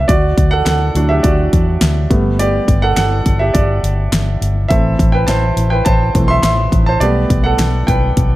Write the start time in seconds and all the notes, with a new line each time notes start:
Already playing: G3 A3 B3 D4 A4 B4 F#5 G5
0.00 E5
0.08 D2 F#4 D5, kick, closed hi-hat
0.38 D2, kick, closed hi-hat
0.51 A4 F#5
0.65 D2 A4 F#5, snare, clap, closed hi-hat
0.95 D2 F#3 A3 D4, closed hi-hat
1.09 G4 E5
1.23 D2 F#4 D5, kick, closed hi-hat
1.53 E2, kick, closed hi-hat
1.81 D2, snare, clap, closed hi-hat
2.10 G1 G3 A3 B3, kick, closed hi-hat
2.39 G4 D5, closed hi-hat
2.68 G1, kick, closed hi-hat
2.82 A4 F#5
2.96 G1 A4 F#5, snare, clap, closed hi-hat
3.26 G1, kick, closed hi-hat
3.39 G4 E5
3.54 G1 G4 D5, kick, closed hi-hat
3.83 G1, closed hi-hat
4.12 G1, snare, clap, closed hi-hat
4.41 G1, closed hi-hat
4.68 A1 E3 A3 C4 A4 E5, kick, closed hi-hat
4.99 A1, kick, closed hi-hat
5.12 B4 G5
5.27 A1 C5 A5, snare, clap, closed hi-hat
5.57 A1, closed hi-hat
5.70 B4 G5
5.85 A1 C5 A5, kick, closed hi-hat
6.15 B1 E3 A3 C4, kick, closed hi-hat
6.28 E5 C6
6.43 A1 E5 C6, snare, clap, closed hi-hat
6.72 A1, kick, closed hi-hat
6.86 C5 A5
7.00 B1 G3 A3 B3 G4 D5, closed hi-hat
7.30 B1, kick, closed hi-hat
7.44 A4 F#5
7.59 B1, snare, clap, closed hi-hat
7.87 B1 B4 G5, kick, closed hi-hat
8.17 B1, kick, closed hi-hat